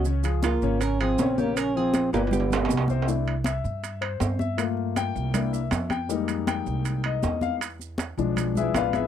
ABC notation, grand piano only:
X:1
M:4/4
L:1/8
Q:1/4=159
K:Gdor
V:1 name="Grand piano"
[_D,_D_d] [F,F_A]2 [D,Dd]2 [F,FA] [D,Dd] [D,Dd]- | [_D,_D_d] [F,F_A]2 [=B,,=B,=B] [=D,=DF] [B,,B,B]2 [C,Cc] | [K:Flyd] z2 e3 c2 e | z2 g3 e2 g |
z2 g3 _e2 f | z4 z [E^GBe] [FBdf] [EGBe] |]
V:2 name="Grand piano"
z8 | z8 | [K:Flyd] [A,DE] z6 z | [A,_B,F]4 [B,DE] z3 |
[G,_A,_B,_E]8 | z3 [F,^G,D]4- [F,G,D] |]